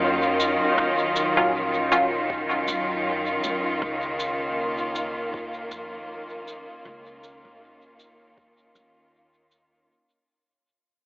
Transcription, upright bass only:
Already playing: F#2
0.78 D#2
1.37 A#1
2.68 F#2
3.44 F#2
3.82 C#2
5.71 F2
6.85 C#2
7.45 G#1
8.75 D#2

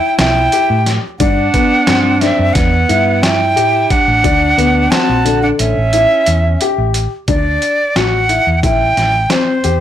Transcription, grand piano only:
Already playing: E4
0.53 G4
1.20 D4
1.54 B3
1.88 C4
2.22 D4
2.89 E4
3.56 G4
4.24 D4
4.58 B3
4.91 C4
5.25 D3
5.94 E4
6.62 G4
7.28 D4
7.96 F#4
8.29 E4
8.63 E4
9.30 C4
9.64 G4

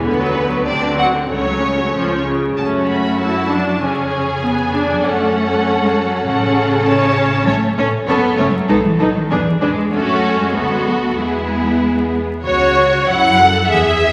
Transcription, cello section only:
0.04 D2
0.66 D2
1.30 C#2
1.94 C#2
2.57 A3
3.50 F#3
3.81 C#3
4.89 F#3
5.04 A3
5.81 G#3
5.96 F#3
6.26 C#3
7.47 A3
7.78 C#4
8.07 B3
8.38 A3
8.54 F#3
8.69 G#3
8.84 E3
9.00 F#3
9.16 D#3
9.30 E3
9.62 G#3
9.92 A3
10.40 G#3
10.55 A3
10.71 G#3
10.86 F#3
11.03 A3
11.17 G#3
12.44 C#3
13.08 F#3
13.70 E3

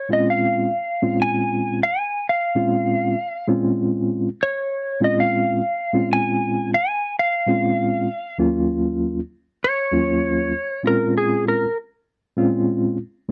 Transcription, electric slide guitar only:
Already playing: C#5
0.13 D#5
0.30 F5
1.22 G#5
1.83 F5
1.98 G#5
2.29 F5
4.43 C#5
5.04 D#5
5.20 F5
6.13 G#5
6.74 F5
6.88 G#5
7.19 F5
9.64 C#5
10.87 A#4
11.18 G#4
11.48 A#4

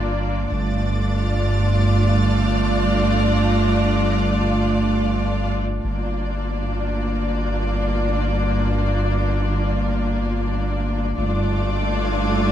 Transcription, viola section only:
Already playing: A#3 D4
0.50 A3 D4
5.84 A#3 D4
11.17 A3 D4

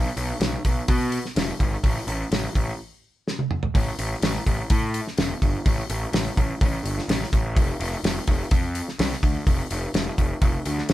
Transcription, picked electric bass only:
0.16 B1
0.40 B1
0.65 B1
0.89 B2
1.36 F1
1.60 G#1
1.83 A1
2.07 A1
2.31 A1
2.55 A1
3.75 A1
3.99 A1
4.22 A1
4.47 A1
4.70 A2
5.18 E1
5.42 G1
5.66 A1
5.90 A1
6.13 A1
6.37 A1
6.61 A1
6.84 G1
7.08 A1
7.32 A1
7.56 F1
7.80 F1
8.03 F1
8.28 F1
8.51 F2
8.99 C2
9.23 D2
9.47 F1
9.71 F1
9.94 F1
10.18 F1
10.41 F1
10.66 D2
10.90 F1

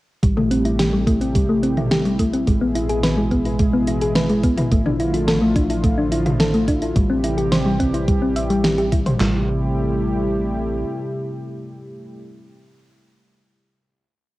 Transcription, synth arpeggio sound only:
0.23 G3
0.37 A3
0.51 C4
0.65 E4
0.79 G4
0.93 G3
1.07 A3
1.21 C4
1.35 G3
1.49 A3
1.63 C4
1.77 E4
1.91 G4
2.05 G3
2.19 A3
2.33 C4
2.47 G#3
2.61 B3
2.75 E4
2.89 G#4
3.03 B4
3.17 G#3
3.31 B3
3.45 E4
3.59 G#3
3.73 B3
3.88 E4
4.02 G#4
4.16 B4
4.30 G#3
4.44 B3
4.58 E4
4.72 A3
4.86 D4
5.00 E4
5.14 F4
5.27 A4
5.42 A3
5.56 D4
5.70 E4
5.84 A3
5.98 D4
6.12 E4
6.26 F4
6.40 A4
6.54 A3
6.68 D4
6.82 E4
6.96 G3
7.10 C4
7.24 E4
7.38 G4
7.52 C5
7.66 G3
7.80 C4
7.94 E4
8.08 G3
8.22 C4
8.36 E5
8.50 G3
8.64 G4
8.78 G4
8.92 E4
9.06 C5
9.20 G3

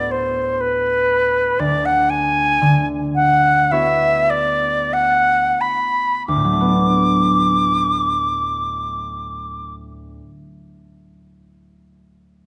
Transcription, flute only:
Already playing: D5
0.11 C5
0.60 B4
1.59 D5
1.85 F#5
2.10 G#5
3.15 F#5
3.71 E5
4.30 D5
4.93 F#5
5.61 B5
6.27 D6

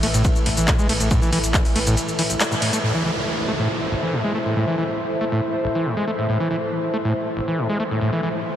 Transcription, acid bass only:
0.03 A3
0.14 A2
0.46 A1
0.57 E3
0.68 A2
0.79 G#3
0.89 A3
1.00 A2
1.11 A2
1.22 E3
1.32 E3
1.76 A3
1.87 A2
2.19 E3
2.30 A1
2.40 G#3
2.52 A2
2.62 A2
2.73 A3
2.84 A2
2.95 E3
3.05 E3
3.48 A3
3.59 A2
3.92 A1
4.03 E3
4.13 A2
4.24 G#3
4.35 A3
4.46 A2
4.56 A2
4.67 E3
4.78 E3
5.21 A3
5.32 A2
5.64 A1
5.75 E3
5.86 A2
5.97 G#3
6.07 A3
6.19 A2
6.29 A2
6.40 E3
6.50 E3
6.94 A3
7.05 A2
7.37 A1
7.48 E3
7.58 A2
7.69 G#3
7.80 A3
7.91 A2
8.01 A2
8.13 E3
8.23 E3

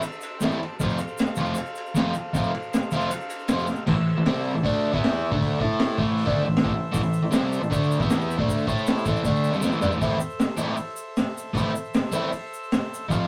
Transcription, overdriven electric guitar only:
0.41 A2 E3 A3 C4 E4
0.80 F2 C3 F3 A3 C4
0.84 F4
1.37 F2 C3 F3 A3 C4 F4
1.95 F2 C3 F3 A3 C4
1.99 F4
2.33 F2 C3 F3 A3 C4 F4
2.92 F2 C3 F3 A3 C4 F4
3.49 F2 C3 F3 A3 C4 F4
3.87 A2 E3
3.96 A2 E3
4.17 A2 E3
4.26 C3 G3 C4
4.54 A2 E3
4.64 D3 A3 D4
4.93 E3 B3 E4
5.32 D3 A3 D4
5.60 A3 E4 A4
5.98 A2 E3 A3
6.25 D3 A3 D4
6.45 A2 E3
6.64 A2 E3
6.74 A2 E3
6.92 A2 E3
7.02 A2 E3
7.23 A2 E3
7.31 C3 G3 C4
7.61 A2 E3
7.71 D3 A3 D4
8.00 E3 B3 E4
8.37 D3 A3 D4
8.67 A3 E4 A4
9.05 A2 E3 A3
9.24 D3 A3 D4
9.51 C3 G3
9.62 F3 C4
9.71 A2 E3
9.81 G3 D4
9.91 A2 E3
10.00 A2 E3 A3 C4 E4
10.57 A2 E3 A3 C4 E4
11.53 A2 E3 A3 C4 E4
12.12 A2 E3 A3 C4 E4
13.08 F2 C3 F3 A3 C4 F4

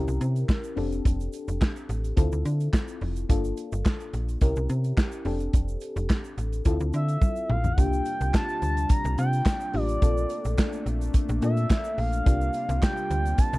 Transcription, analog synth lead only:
6.95 E5
7.51 F5
7.72 F#5
7.79 G5
8.35 A5
8.91 A#5
9.19 G5
9.75 D5
11.43 E5
11.99 F5
12.83 G5
13.39 A5

